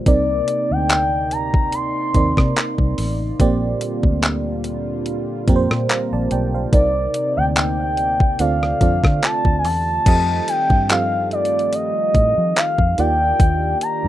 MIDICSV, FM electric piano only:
0, 0, Header, 1, 2, 480
1, 0, Start_track
1, 0, Tempo, 833333
1, 36, Time_signature, 4, 2, 24, 8
1, 8111, End_track
2, 0, Start_track
2, 0, Title_t, "FM electric piano"
2, 0, Program_c, 0, 5
2, 0, Control_c, 0, 64, 127
2, 37, Note_on_c, 0, 48, 79
2, 39, Note_on_c, 0, 60, 69
2, 42, Note_on_c, 0, 63, 71
2, 43, Note_on_c, 0, 70, 68
2, 45, Control_c, 0, 64, 0
2, 46, Note_on_c, 0, 74, 85
2, 150, Control_c, 0, 64, 127
2, 716, Note_off_c, 0, 48, 0
2, 718, Note_off_c, 0, 60, 0
2, 719, Note_off_c, 0, 63, 0
2, 719, Note_off_c, 0, 70, 0
2, 721, Note_off_c, 0, 74, 0
2, 1237, Note_on_c, 0, 48, 75
2, 1240, Note_on_c, 0, 60, 70
2, 1242, Note_on_c, 0, 63, 68
2, 1244, Note_on_c, 0, 70, 68
2, 1246, Note_on_c, 0, 74, 78
2, 1746, Note_off_c, 0, 48, 0
2, 1747, Note_off_c, 0, 60, 0
2, 1748, Note_off_c, 0, 63, 0
2, 1749, Note_off_c, 0, 70, 0
2, 1750, Note_off_c, 0, 74, 0
2, 1956, Note_on_c, 0, 46, 91
2, 1958, Note_on_c, 0, 58, 86
2, 1960, Note_on_c, 0, 60, 87
2, 1963, Note_on_c, 0, 67, 82
2, 1965, Control_c, 0, 64, 0
2, 1965, Note_on_c, 0, 74, 101
2, 2051, Control_c, 0, 64, 127
2, 2636, Note_off_c, 0, 46, 0
2, 2637, Note_off_c, 0, 58, 0
2, 2638, Note_off_c, 0, 60, 0
2, 2640, Note_off_c, 0, 67, 0
2, 2641, Note_off_c, 0, 74, 0
2, 3155, Note_on_c, 0, 46, 90
2, 3158, Note_on_c, 0, 58, 82
2, 3160, Note_on_c, 0, 60, 83
2, 3163, Note_on_c, 0, 67, 82
2, 3165, Note_on_c, 0, 70, 79
2, 3201, Note_off_c, 0, 70, 0
2, 3202, Note_on_c, 0, 72, 99
2, 3400, Note_on_c, 0, 82, 66
2, 3403, Note_on_c, 0, 77, 58
2, 3419, Note_off_c, 0, 72, 0
2, 3521, Note_off_c, 0, 82, 0
2, 3523, Note_off_c, 0, 77, 0
2, 3530, Note_on_c, 0, 81, 72
2, 3533, Note_on_c, 0, 74, 65
2, 3633, Note_off_c, 0, 81, 0
2, 3635, Note_off_c, 0, 74, 0
2, 3639, Note_on_c, 0, 79, 75
2, 3642, Note_on_c, 0, 74, 62
2, 3665, Note_off_c, 0, 46, 0
2, 3666, Note_off_c, 0, 58, 0
2, 3667, Note_off_c, 0, 60, 0
2, 3669, Note_off_c, 0, 67, 0
2, 3761, Note_off_c, 0, 79, 0
2, 3762, Note_off_c, 0, 74, 0
2, 3769, Note_on_c, 0, 77, 66
2, 3773, Note_on_c, 0, 72, 57
2, 3875, Note_on_c, 0, 48, 75
2, 3876, Note_on_c, 0, 60, 73
2, 3879, Note_on_c, 0, 63, 71
2, 3882, Note_on_c, 0, 70, 72
2, 3884, Note_on_c, 0, 74, 84
2, 3885, Control_c, 0, 64, 0
2, 3996, Note_off_c, 0, 77, 0
2, 3997, Note_off_c, 0, 72, 0
2, 3997, Control_c, 0, 64, 127
2, 4556, Note_off_c, 0, 48, 0
2, 4556, Note_off_c, 0, 60, 0
2, 4557, Note_off_c, 0, 63, 0
2, 4559, Note_off_c, 0, 70, 0
2, 4560, Note_off_c, 0, 74, 0
2, 4836, Note_on_c, 0, 50, 80
2, 4837, Note_on_c, 0, 60, 75
2, 4840, Note_on_c, 0, 65, 74
2, 4843, Note_on_c, 0, 69, 75
2, 4845, Control_c, 0, 64, 0
2, 4845, Note_on_c, 0, 74, 88
2, 4945, Control_c, 0, 64, 127
2, 5032, Note_off_c, 0, 50, 0
2, 5033, Note_off_c, 0, 60, 0
2, 5034, Note_off_c, 0, 65, 0
2, 5036, Note_off_c, 0, 69, 0
2, 5036, Note_off_c, 0, 74, 0
2, 5074, Note_on_c, 0, 50, 76
2, 5078, Note_on_c, 0, 60, 71
2, 5080, Note_on_c, 0, 65, 68
2, 5082, Note_on_c, 0, 69, 69
2, 5084, Note_on_c, 0, 74, 83
2, 5585, Note_off_c, 0, 50, 0
2, 5586, Note_off_c, 0, 60, 0
2, 5587, Note_off_c, 0, 65, 0
2, 5589, Note_off_c, 0, 69, 0
2, 5590, Note_off_c, 0, 74, 0
2, 5795, Note_on_c, 0, 53, 76
2, 5798, Note_on_c, 0, 60, 73
2, 5800, Note_on_c, 0, 67, 72
2, 5803, Note_on_c, 0, 69, 73
2, 5804, Control_c, 0, 64, 0
2, 5806, Note_on_c, 0, 75, 87
2, 5890, Control_c, 0, 64, 127
2, 6142, Note_off_c, 0, 53, 0
2, 6143, Note_off_c, 0, 60, 0
2, 6144, Note_off_c, 0, 67, 0
2, 6146, Note_off_c, 0, 69, 0
2, 6147, Note_off_c, 0, 75, 0
2, 6276, Note_on_c, 0, 53, 78
2, 6278, Note_on_c, 0, 60, 68
2, 6281, Note_on_c, 0, 67, 67
2, 6283, Note_on_c, 0, 69, 72
2, 6286, Note_on_c, 0, 77, 88
2, 6956, Note_off_c, 0, 53, 0
2, 6957, Note_off_c, 0, 60, 0
2, 6958, Note_off_c, 0, 67, 0
2, 6960, Note_off_c, 0, 69, 0
2, 6961, Note_off_c, 0, 77, 0
2, 7476, Note_on_c, 0, 51, 79
2, 7478, Note_on_c, 0, 58, 74
2, 7480, Note_on_c, 0, 65, 75
2, 7483, Control_c, 0, 64, 0
2, 7483, Note_on_c, 0, 67, 72
2, 7485, Note_on_c, 0, 74, 90
2, 7583, Control_c, 0, 64, 127
2, 8060, Note_off_c, 0, 51, 0
2, 8061, Note_off_c, 0, 58, 0
2, 8062, Note_off_c, 0, 65, 0
2, 8063, Note_off_c, 0, 67, 0
2, 8064, Note_off_c, 0, 74, 0
2, 8111, End_track
0, 0, End_of_file